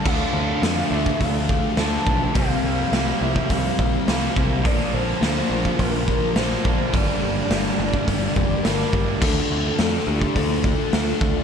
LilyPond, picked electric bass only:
\new Staff \with { instrumentName = "Picked electric bass" } { \clef bass \time 4/4 \key d \minor \tempo 4 = 105 d,8 d,8 f,8 d,8 d,4 d,8 b,,8 | c,8 c,8 c,8 c,8 c,8 bes,,8 c,8 c,8 | bes,,8 bes,,8 d,8 bes,,8 bes,,4 bes,,8 bes,,8 | g,,8 g,,8 g,,8 g,,8 g,,8 f,,8 g,,8 g,,8 |
d,8 d,8 f,8 d,8 d,4 d,8 d,8 | }